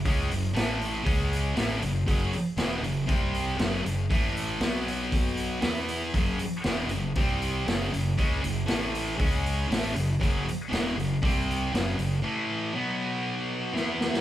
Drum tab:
HH |o-o-o-o-o-o-o-o-|o-o-o-o-o-o-o-o-|o-o-o-o-o-o-o-o-|o-o-o-o-o-o-o-o-|
SD |----o-------o---|----o-------o---|----o-------o---|----o-------o---|
BD |o-------o-------|o-------o-------|o-------o-------|o-------o-------|

HH |o-o-o-o-o-o-o-o-|o-o-o-o-o-o-o-o-|----------------|
SD |----o-------o---|----o-------o---|------------o-oo|
BD |o-------o-------|o-------o-------|----------------|